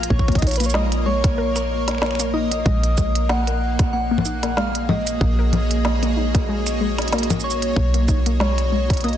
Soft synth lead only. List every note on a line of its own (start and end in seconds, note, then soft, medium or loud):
0.00 0.12 F5 loud
0.10 0.40 C#5 loud
0.38 0.49 D#5 medium
0.47 0.59 C#5 medium
0.58 0.68 B4 medium
0.66 0.73 C#5 medium
0.74 1.08 D#5 loud
1.06 2.35 C#5 loud
2.34 2.65 D#5 loud
2.65 3.31 D#5 loud
3.29 3.92 F#5 loud
3.93 4.58 F#5 loud
4.57 4.88 F5 loud
4.89 7.46 D#5 loud
7.44 8.39 C#5 loud
8.40 9.00 C#5 medium
9.04 9.17 D#5 loud